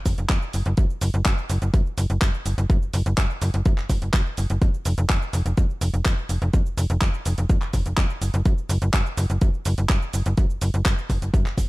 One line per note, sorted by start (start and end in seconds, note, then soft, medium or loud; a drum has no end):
0.06 0.14 F1 loud
0.06 kick medium
0.06 open hi-hat loud
0.06 shaker medium
0.18 0.26 F1 medium
0.18 closed hi-hat medium
0.18 shaker soft
0.29 0.38 F2 loud
0.29 kick loud
0.29 clap loud
0.29 closed hi-hat medium
0.29 shaker soft
0.42 shaker soft
0.53 0.62 F#1 medium
0.53 open hi-hat medium
0.53 shaker medium
0.66 0.74 F#1 medium
0.66 closed hi-hat medium
0.66 shaker soft
0.77 0.86 F#2 loud
0.77 kick loud
0.77 closed hi-hat medium
0.77 shaker soft
0.90 shaker soft
1.01 1.10 F#1 loud
1.01 open hi-hat loud
1.01 shaker medium
1.14 1.22 F#1 loud
1.14 closed hi-hat soft
1.14 shaker soft
1.25 1.34 F#2 loud
1.25 kick loud
1.25 clap loud
1.25 closed hi-hat medium
1.25 shaker soft
1.38 shaker soft
1.49 1.58 F#1 loud
1.49 open hi-hat loud
1.49 shaker medium
1.62 1.70 F#1 medium
1.62 closed hi-hat medium
1.62 shaker soft
1.74 1.82 F#2 loud
1.74 kick loud
1.74 closed hi-hat medium
1.74 shaker soft
1.86 shaker soft
1.98 2.06 F#1 loud
1.98 open hi-hat loud
1.98 shaker medium
2.10 2.18 F#1 medium
2.10 closed hi-hat medium
2.10 shaker soft
2.21 2.30 F#2 medium
2.21 kick loud
2.21 clap loud
2.21 closed hi-hat medium
2.21 shaker soft
2.34 shaker soft
2.46 2.54 F#1 medium
2.46 open hi-hat medium
2.46 shaker medium
2.58 2.66 F#1 medium
2.58 closed hi-hat medium
2.58 shaker soft
2.70 2.78 F#2 loud
2.70 kick loud
2.70 closed hi-hat medium
2.70 shaker soft
2.82 2.91 F#1 soft
2.82 shaker soft
2.93 3.02 F#1 loud
2.93 open hi-hat loud
2.93 shaker medium
3.06 3.14 F#1 loud
3.06 closed hi-hat soft
3.06 shaker soft
3.17 3.26 F#2 medium
3.17 kick loud
3.17 clap loud
3.17 closed hi-hat medium
3.17 shaker soft
3.30 shaker soft
3.42 3.50 F#1 loud
3.42 open hi-hat medium
3.42 shaker medium
3.54 3.62 F#1 medium
3.54 closed hi-hat medium
3.54 shaker soft
3.65 3.74 F#2 loud
3.65 kick loud
3.65 closed hi-hat medium
3.65 shaker soft
3.78 3.87 F#1 soft
3.78 clap soft
3.78 shaker soft
3.90 3.98 F#1 loud
3.90 kick medium
3.90 open hi-hat loud
3.90 shaker medium
4.02 4.10 F#1 medium
4.02 closed hi-hat medium
4.02 shaker soft
4.13 4.22 F#2 loud
4.13 kick loud
4.13 clap loud
4.13 closed hi-hat medium
4.13 shaker soft
4.26 shaker soft
4.37 4.46 F#1 medium
4.37 open hi-hat medium
4.37 shaker medium
4.50 4.58 F#1 medium
4.50 closed hi-hat soft
4.50 shaker soft
4.62 4.70 F2 medium
4.62 kick loud
4.62 closed hi-hat medium
4.62 shaker soft
4.74 shaker soft
4.85 4.94 F1 loud
4.85 open hi-hat loud
4.85 shaker medium
4.98 5.06 F1 loud
4.98 closed hi-hat soft
4.98 shaker soft
5.09 5.18 F2 medium
5.09 kick loud
5.09 clap loud
5.09 closed hi-hat medium
5.09 shaker soft
5.22 shaker soft
5.33 5.42 F1 loud
5.33 open hi-hat medium
5.33 shaker medium
5.46 5.54 F1 medium
5.46 closed hi-hat medium
5.46 shaker soft
5.57 5.66 F2 loud
5.57 kick loud
5.57 closed hi-hat medium
5.57 shaker soft
5.70 shaker soft
5.81 5.90 F1 loud
5.81 open hi-hat loud
5.81 shaker medium
5.94 6.02 F1 medium
5.94 closed hi-hat medium
5.94 shaker soft
6.05 6.14 F2 loud
6.05 kick loud
6.05 clap loud
6.05 closed hi-hat medium
6.05 shaker soft
6.18 shaker soft
6.29 6.38 F1 medium
6.29 open hi-hat medium
6.29 shaker medium
6.42 6.50 F1 loud
6.42 closed hi-hat soft
6.42 shaker soft
6.53 6.62 F2 loud
6.53 kick loud
6.53 closed hi-hat medium
6.53 shaker soft
6.66 6.75 F1 soft
6.66 shaker soft
6.77 6.86 F1 loud
6.77 open hi-hat loud
6.77 shaker medium
6.90 6.98 F1 loud
6.90 closed hi-hat medium
6.90 shaker soft
7.01 7.10 F2 medium
7.01 kick loud
7.01 clap loud
7.01 closed hi-hat medium
7.01 shaker soft
7.14 shaker soft
7.25 7.34 F1 loud
7.25 open hi-hat loud
7.25 shaker medium
7.38 7.46 F1 medium
7.38 closed hi-hat medium
7.38 shaker soft
7.49 7.58 F2 loud
7.49 kick loud
7.49 closed hi-hat medium
7.49 shaker soft
7.62 7.71 F1 soft
7.62 clap soft
7.62 shaker soft
7.73 7.82 F1 loud
7.73 kick medium
7.73 open hi-hat loud
7.73 shaker medium
7.86 7.94 F1 medium
7.86 closed hi-hat medium
7.86 shaker soft
7.97 8.06 F2 medium
7.97 kick loud
7.97 clap loud
7.97 closed hi-hat medium
7.97 shaker soft
8.10 shaker soft
8.22 8.30 F#1 medium
8.22 open hi-hat medium
8.22 shaker medium
8.34 8.42 F#1 loud
8.34 closed hi-hat medium
8.34 shaker soft
8.45 8.54 F#2 loud
8.45 kick loud
8.45 closed hi-hat medium
8.45 shaker soft
8.58 shaker soft
8.69 8.78 F#1 loud
8.69 open hi-hat loud
8.69 shaker medium
8.82 8.90 F#1 loud
8.82 closed hi-hat medium
8.82 shaker soft
8.93 9.02 F#2 medium
8.93 kick loud
8.93 clap loud
8.93 closed hi-hat medium
8.93 shaker soft
9.06 shaker soft
9.17 9.26 F#1 loud
9.17 open hi-hat medium
9.17 shaker medium
9.30 9.38 F#1 medium
9.30 closed hi-hat medium
9.30 shaker soft
9.41 9.50 F#2 loud
9.41 kick loud
9.41 closed hi-hat medium
9.41 shaker soft
9.54 shaker soft
9.65 9.74 F#1 loud
9.65 open hi-hat loud
9.65 shaker medium
9.78 9.86 F#1 medium
9.78 closed hi-hat medium
9.78 shaker soft
9.89 9.98 F#2 medium
9.89 kick loud
9.89 clap loud
9.89 closed hi-hat medium
9.89 shaker soft
10.02 shaker soft
10.13 10.22 F#1 medium
10.13 open hi-hat medium
10.13 shaker medium
10.26 10.34 F#1 loud
10.26 closed hi-hat medium
10.26 shaker soft
10.37 10.46 F#2 loud
10.37 kick loud
10.37 closed hi-hat medium
10.37 shaker soft
10.50 10.59 F#1 soft
10.50 shaker soft
10.61 10.70 F#1 loud
10.61 open hi-hat loud
10.61 shaker medium
10.74 10.82 F#1 loud
10.74 closed hi-hat medium
10.74 shaker soft
10.85 10.94 F#2 medium
10.85 kick loud
10.85 clap loud
10.85 closed hi-hat medium
10.85 shaker soft
10.98 shaker soft
11.10 11.18 F#1 loud
11.10 kick medium
11.10 open hi-hat loud
11.10 shaker medium
11.22 11.30 F#1 medium
11.22 closed hi-hat medium
11.22 shaker soft
11.34 11.45 F#2 medium
11.34 kick loud
11.34 closed hi-hat medium
11.34 shaker soft
11.46 11.55 F#1 soft
11.46 clap soft
11.46 shaker soft
11.58 11.66 F#1 medium
11.58 kick medium
11.58 open hi-hat loud
11.58 shaker medium